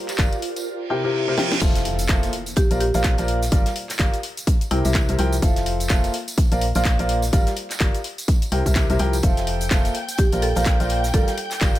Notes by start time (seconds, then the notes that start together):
Already playing: F4 A#4 D5
0.08 snare, clap, closed hi-hat, tambourine
0.18 G1 F4 G4 A#4 D5 F5, kick, snare, clap, closed hi-hat, tambourine
0.32 closed hi-hat, tambourine
0.42 closed hi-hat, open hi-hat
0.56 closed hi-hat, tambourine
0.66 reverse cymbal
0.90 C3 E4 G4 A#4 C5 G5
1.04 C3 E4 G4 A#4 C5 E5
1.28 C3 E4 G4 A#4 C5 E5
1.38 F3 E4 G4 A#4 C5 G5, snare
1.52 snare
1.61 F1 F3 F4 A4 C5 E5 F5, kick, closed hi-hat, crash, tambourine, impact, shaker
1.75 snare, closed hi-hat, tambourine, shaker
1.85 closed hi-hat, open hi-hat
1.99 closed hi-hat, tambourine, shaker
2.08 F1 A#3 F4 A4 C5 E5 F5, kick, snare, clap, closed hi-hat, tambourine, shaker
2.23 snare, closed hi-hat, tambourine, shaker
2.33 closed hi-hat, open hi-hat
2.46 closed hi-hat, tambourine, shaker
2.56 G4, kick, closed hi-hat, tambourine, shaker
2.71 A#1 A#3 F4 A#4 C5 D5 F5, closed hi-hat, tambourine, shaker
2.80 G4, closed hi-hat, open hi-hat
2.94 A#1 A#3 F4 A#4 C5 D5 F5, closed hi-hat, tambourine, shaker
3.04 kick, snare, clap, closed hi-hat, tambourine, shaker
3.18 A#1 A#3 F4 A#4 C5 D5 F5, closed hi-hat, tambourine, shaker
3.28 closed hi-hat, open hi-hat
3.42 snare, tambourine, shaker
3.52 G1 G3 F4 G4 A#4 D5 F5, kick, closed hi-hat, tambourine, shaker
3.66 snare, closed hi-hat, tambourine, shaker
3.76 closed hi-hat, open hi-hat
3.89 snare, clap, closed hi-hat, tambourine, shaker
3.99 G1 F4 G4 A#4 D5 F5, kick, snare, clap, closed hi-hat, shaker
4.14 closed hi-hat, tambourine, shaker
4.23 closed hi-hat, open hi-hat
4.37 closed hi-hat, tambourine, shaker
4.47 kick, closed hi-hat, tambourine, shaker
4.61 closed hi-hat, tambourine, shaker
4.71 C2 C3 E4 G4 A#4 C5 G5, closed hi-hat, open hi-hat
4.85 C2 C3 E4 G4 A#4 C5 E5, closed hi-hat, tambourine, shaker
4.94 kick, snare, clap, closed hi-hat, shaker
5.08 C2 C3 E4 G4 A#4 C5 E5, closed hi-hat, tambourine, shaker
5.19 C2 F3 E4 G4 A#4 C5 G5, closed hi-hat, open hi-hat
5.32 tambourine, shaker
5.42 F1 F3 F4 A4 C5 E5 F5, kick, closed hi-hat, tambourine, shaker
5.56 snare, closed hi-hat, tambourine, shaker
5.66 closed hi-hat, open hi-hat
5.80 closed hi-hat, tambourine, shaker
5.89 F1 A#3 F4 A4 C5 E5 F5, kick, snare, clap, closed hi-hat, tambourine, shaker
6.04 snare, closed hi-hat, tambourine, shaker
6.14 closed hi-hat, open hi-hat
6.28 closed hi-hat, tambourine, shaker
6.38 kick, closed hi-hat, shaker
6.52 A#1 A#3 F4 A#4 C5 D5 F5, closed hi-hat, tambourine, shaker
6.61 closed hi-hat, open hi-hat
6.75 A#1 A#3 F4 A#4 C5 D5 F5, closed hi-hat, tambourine, shaker
6.85 kick, snare, clap, closed hi-hat, tambourine, shaker
6.99 A#1 A#3 F4 A#4 C5 D5 F5, closed hi-hat, tambourine, shaker
7.09 closed hi-hat, open hi-hat
7.22 snare, tambourine, shaker
7.33 G1 G3 F4 G4 A#4 D5 F5, kick, closed hi-hat, tambourine, shaker
7.47 snare, closed hi-hat, tambourine, shaker
7.56 closed hi-hat, open hi-hat
7.70 snare, clap, closed hi-hat, tambourine, shaker
7.80 G1 F4 G4 A#4 D5 F5, kick, snare, clap, closed hi-hat, shaker
7.95 closed hi-hat, tambourine, shaker
8.04 closed hi-hat, open hi-hat
8.18 closed hi-hat, tambourine, shaker
8.28 kick, closed hi-hat, tambourine, shaker
8.42 closed hi-hat, tambourine, shaker
8.52 C2 C3 E4 G4 A#4 C5 G5, closed hi-hat, open hi-hat
8.66 C2 C3 E4 G4 A#4 C5 E5, kick, closed hi-hat, tambourine, shaker
8.75 kick, snare, clap, closed hi-hat, tambourine, shaker
8.90 C2 C3 E4 G4 A#4 C5 E5, closed hi-hat, tambourine, shaker
8.99 C2 F3 E4 G4 A#4 C5 G5, closed hi-hat, open hi-hat
9.13 closed hi-hat, tambourine, shaker
9.23 F1 F3 F4 A4 C5 E5 F5 G5 G6, kick, closed hi-hat, shaker
9.37 snare, closed hi-hat, tambourine, shaker
9.47 closed hi-hat, open hi-hat
9.61 closed hi-hat, tambourine, shaker
9.71 F1 A#3 F4 A4 C5 E5 F5, kick, snare, clap, closed hi-hat, tambourine, shaker
9.85 snare, closed hi-hat, tambourine, shaker
9.95 closed hi-hat, open hi-hat
10.08 closed hi-hat, tambourine, shaker
10.18 G4, kick, closed hi-hat, tambourine, shaker
10.32 A#1 A#3 F4 A#4 C5 D5 F5, closed hi-hat, tambourine, shaker
10.42 A4, closed hi-hat, open hi-hat
10.55 A#1 A#3 F4 A#4 C5 D5 F5, closed hi-hat, tambourine, shaker
10.65 kick, snare, clap, closed hi-hat, tambourine, shaker
10.80 A#1 A#3 F4 A#4 C5 D5 F5, closed hi-hat, tambourine, shaker
10.89 closed hi-hat, open hi-hat
11.04 snare, tambourine, shaker
11.14 G1 G3 F4 G4 A4 A#4 D5 F5, kick, closed hi-hat, tambourine, shaker
11.27 snare, closed hi-hat, tambourine, shaker
11.38 closed hi-hat, open hi-hat
11.51 snare, clap, closed hi-hat, tambourine, shaker
11.61 G1 F4 G4 A#4 D5 F5, kick, snare, clap, closed hi-hat, tambourine, shaker
11.75 closed hi-hat, tambourine, shaker